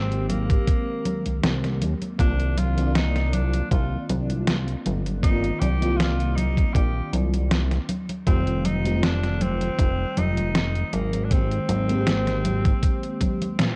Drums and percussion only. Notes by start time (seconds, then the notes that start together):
0.12 closed hi-hat
0.29 closed hi-hat, high conga
0.50 kick, closed hi-hat, high conga
0.67 kick, closed hi-hat, high conga
1.05 closed hi-hat, high conga
1.26 closed hi-hat, high conga
1.44 snare, closed hi-hat, high conga
1.64 snare, closed hi-hat
1.82 closed hi-hat, high conga
2.02 closed hi-hat, high conga
2.19 kick, closed hi-hat, high conga
2.40 closed hi-hat
2.58 closed hi-hat, high conga
2.78 closed hi-hat, high conga
2.95 snare, closed hi-hat, high conga
3.16 snare, closed hi-hat
3.33 closed hi-hat, high conga
3.53 closed hi-hat, high conga
3.71 kick, closed hi-hat, high conga
4.09 closed hi-hat, high conga
4.30 closed hi-hat, high conga
4.47 snare, closed hi-hat, high conga
4.68 closed hi-hat
4.86 closed hi-hat, high conga
5.06 closed hi-hat, high conga
5.23 kick, closed hi-hat, high conga
5.44 closed hi-hat
5.62 closed hi-hat, high conga
5.82 closed hi-hat, high conga
6.00 snare, closed hi-hat, high conga
6.20 closed hi-hat
6.38 closed hi-hat, high conga
6.57 kick, closed hi-hat, high conga
6.75 kick, closed hi-hat, high conga
7.13 closed hi-hat, high conga
7.34 closed hi-hat, high conga
7.51 snare, closed hi-hat, high conga
7.72 snare, closed hi-hat
7.89 closed hi-hat, high conga
8.09 closed hi-hat, high conga
8.27 kick, closed hi-hat, high conga
8.47 closed hi-hat
8.65 closed hi-hat, high conga
8.86 closed hi-hat, high conga
9.03 snare, closed hi-hat, high conga
9.24 snare, closed hi-hat
9.41 closed hi-hat, high conga
9.61 closed hi-hat, high conga
9.79 kick, closed hi-hat, high conga
10.17 closed hi-hat, high conga
10.37 closed hi-hat, high conga
10.55 snare, closed hi-hat, high conga
10.75 closed hi-hat
10.93 closed hi-hat, high conga
11.13 closed hi-hat, high conga
11.31 kick, closed hi-hat, high conga
11.51 closed hi-hat
11.69 closed hi-hat, high conga
11.89 closed hi-hat, high conga
12.07 snare, closed hi-hat, high conga
12.27 snare, closed hi-hat
12.45 closed hi-hat, high conga
12.65 kick, closed hi-hat, high conga
12.83 kick, closed hi-hat, high conga
13.03 closed hi-hat
13.21 kick, closed hi-hat, high conga
13.42 closed hi-hat, high conga
13.59 snare, closed hi-hat, high tom, high conga